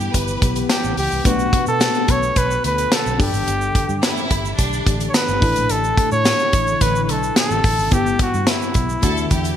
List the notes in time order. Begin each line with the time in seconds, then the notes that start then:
Already playing: G2 E3 B3 E4 G4
0.00 shaker
0.14 G1 B4, kick, closed hi-hat, shaker
0.28 shaker
0.42 B1, kick, closed hi-hat, shaker
0.56 closed hi-hat, shaker
0.69 G4, snare, closed hi-hat, tambourine, shaker
0.84 A1, shaker
0.97 C#2 G4, open hi-hat, shaker
1.12 C2, shaker
1.24 B1 B2 D3 A3 B3 D4 F#4 A4 B4, kick, closed hi-hat, shaker
1.39 shaker
1.53 kick, closed hi-hat
1.67 B2 A4, shaker
1.80 snare, closed hi-hat, tambourine, shaker
1.94 shaker
2.08 B1 C#5, kick, closed hi-hat, shaker
2.23 shaker
2.36 B1 B4, kick, closed hi-hat, shaker
2.51 shaker
2.64 D2 B4, closed hi-hat, shaker
2.78 closed hi-hat, shaker
2.92 A4, snare, closed hi-hat, tambourine, shaker
3.06 B1, shaker
3.18 G1 G2 A3 D4 G4 A4, kick, open hi-hat, shaker
3.33 G#1, shaker
3.47 G1, closed hi-hat, shaker
3.61 shaker
3.75 kick, closed hi-hat
3.89 G2, shaker
4.02 E4, snare, closed hi-hat, tambourine, shaker
4.17 shaker
4.31 G1, kick, closed hi-hat, shaker
4.45 shaker
4.58 B1 D4, kick, closed hi-hat, shaker
4.73 shaker
4.87 A1, kick, closed hi-hat, shaker
5.00 closed hi-hat, shaker
5.09 C#5
5.14 B4, snare, closed hi-hat, tambourine, shaker
5.28 G1, shaker
5.41 A1 A2 D3 D4 E4 A4, kick, open hi-hat, shaker
5.56 A#1, closed hi-hat, shaker
5.69 A1 A4, closed hi-hat, shaker
5.84 shaker
5.97 kick, closed hi-hat
6.12 A2 C#5, shaker
6.25 snare, closed hi-hat, tambourine, shaker
6.39 shaker
6.53 A1, kick, closed hi-hat, shaker
6.67 shaker
6.81 A1 B4, kick, closed hi-hat, shaker
6.96 shaker
7.04 B4
7.09 B1 A4, closed hi-hat, shaker
7.23 shaker
7.36 A4, snare, closed hi-hat, tambourine, shaker
7.51 A1, shaker
7.64 A1, kick, open hi-hat, shaker
7.79 G#1, shaker
7.91 G1 G2 B3 E4 G4, kick, closed hi-hat, shaker
8.06 shaker
8.19 F#4, kick, closed hi-hat
8.34 G2, shaker
8.47 E4, snare, closed hi-hat, tambourine, shaker
8.62 shaker
8.74 B1, kick, closed hi-hat, shaker
8.89 shaker
9.02 D2 D3 A3 D4 F#4 A4, kick, closed hi-hat, shaker
9.17 shaker
9.31 E2 G4, kick, closed hi-hat, shaker
9.45 closed hi-hat, shaker